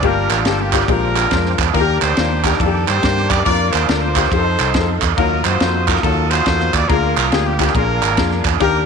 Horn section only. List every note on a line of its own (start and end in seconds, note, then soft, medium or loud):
0.04 0.60 D4 medium
0.04 0.85 F4 medium
0.04 0.31 A#4 loud
0.32 0.39 A#4 medium
0.48 0.60 A4 medium
0.61 0.88 A#3 medium
0.61 0.87 D4 medium
0.61 0.90 G4 medium
0.90 1.71 D4 medium
0.90 1.71 F4 medium
0.90 1.60 A#4 medium
1.74 2.57 D4 medium
1.74 2.01 G4 medium
1.74 2.00 A#4 loud
2.01 2.84 G4 medium
2.01 2.42 C5 loud
2.44 2.60 A#4 medium
2.60 3.43 D4 medium
2.60 2.88 A4 medium
2.87 3.43 G4 medium
2.87 3.31 C5 loud
3.30 3.44 D5 loud
3.45 4.02 F4 medium
3.45 3.86 A#4 medium
3.45 3.71 D5 loud
3.72 3.88 C5 loud
3.88 4.02 A#4 medium
4.02 4.30 F4 medium
4.02 4.30 C5 medium
4.31 5.01 D#4 medium
4.31 5.01 A4 medium
4.31 4.98 C5 medium
5.18 5.44 F4 medium
5.18 5.44 F#4 medium
5.18 5.43 A#4 medium
5.45 6.02 F4 medium
5.45 6.02 F#4 medium
5.45 5.88 C5 loud
5.88 6.03 A#4 medium
6.03 6.29 F4 medium
6.03 6.29 F#4 medium
6.03 6.29 A4 loud
6.30 6.85 F4 medium
6.30 6.85 F#4 medium
6.30 6.73 C5 loud
6.74 6.89 D5 loud
6.89 7.71 F4 medium
6.89 7.16 A#4 loud
7.17 7.31 A#4 medium
7.33 7.46 G#4 medium
7.47 7.74 A#3 medium
7.47 7.76 G4 loud
7.75 8.57 D4 medium
7.75 8.57 F4 medium
7.75 8.46 A#4 medium
8.61 8.86 D4 medium
8.61 8.86 G4 medium
8.61 8.86 A#4 loud